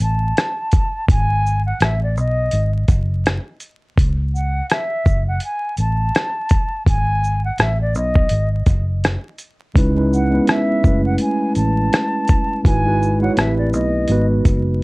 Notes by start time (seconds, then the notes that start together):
0.00 A1 A5
0.37 cross-stick, closed hi-hat
0.71 kick, closed hi-hat, shaker
1.09 G#1 G#5, kick, closed hi-hat
1.46 shaker
1.66 F#5
1.80 A1 E5, cross-stick, closed hi-hat
2.03 D5
2.17 B1 D#5, shaker
2.51 G#1, closed hi-hat
2.88 F#1, kick, closed hi-hat, shaker
3.26 cross-stick, closed hi-hat
3.60 closed hi-hat, shaker
3.97 C#2, kick, closed hi-hat
4.35 F#5, shaker
4.70 E5, cross-stick, closed hi-hat
5.06 F#1, kick, shaker
5.28 F#5
5.40 closed hi-hat
5.44 G#5
5.77 A1 A5, closed hi-hat, shaker
6.15 cross-stick, closed hi-hat
6.49 kick, closed hi-hat, shaker
6.86 G#1 G#5, kick, closed hi-hat
7.24 shaker
7.45 F#5
7.58 A1 E5, cross-stick, closed hi-hat
7.82 D5
7.95 B1 D#5, shaker
8.16 kick
8.29 G#1, closed hi-hat
8.66 F#1, kick, closed hi-hat, shaker
9.04 cross-stick, closed hi-hat
9.38 closed hi-hat, shaker
9.74 C#2 G#3 C#4 D#4 E4 B4, kick, closed hi-hat
9.95 G#3 C#4 D#4 E4
9.99 B4
10.13 F#5, shaker
10.31 G#3 B3 C#4 E4 B4
10.47 E5, cross-stick, closed hi-hat
10.84 F#1 G#3 A3 C#4 E4 B4, kick, shaker
11.06 F#5
11.18 G#5, closed hi-hat
11.55 A1 A5, closed hi-hat, shaker
11.93 cross-stick, closed hi-hat
12.28 kick, closed hi-hat, shaker
12.64 G#1 G#3 D#4 E4 F#4 G#5, kick, closed hi-hat
12.68 B4
12.84 G#3 D#4 E4 F#4 B4
13.02 shaker
13.20 G#3 D#4 E4 F#4 F#5
13.24 C#5
13.36 A1 A3 C4 E4 G4 B4 E5, cross-stick, closed hi-hat
13.58 D5
13.73 B1 D#5, shaker
14.08 G#1 G#3 B3 D#4 F#4, closed hi-hat
14.12 B4
14.45 F#1, kick, closed hi-hat, shaker